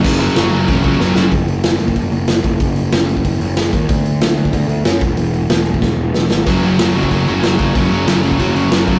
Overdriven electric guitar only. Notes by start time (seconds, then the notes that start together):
0.04 F#2 C#3 F#3
0.20 F#2 C#3 F#3
0.36 F#2 C#3 F#3
0.51 F#2 C#3 F#3
0.68 F#2 C#3 F#3
0.84 F#2 C#3 F#3
1.00 F#2 C#3 F#3
1.15 F#2 C#3 F#3
6.47 F#2 C#3 F#3
6.63 F#2 C#3 F#3
6.80 F#2 C#3 F#3
6.96 F#2 C#3 F#3
7.11 F#2 C#3 F#3
7.28 F#2 C#3 F#3
7.44 F#2 C#3 F#3
7.58 F#2 C#3 F#3
7.75 F#2 C#3 F#3
7.91 F#2 C#3 F#3
8.07 F#2 C#3 F#3
8.23 F#2 C#3 F#3
8.39 F#2 C#3 F#3
8.55 F#2 C#3 F#3
8.72 F#2 C#3 F#3
8.87 F#2 C#3 F#3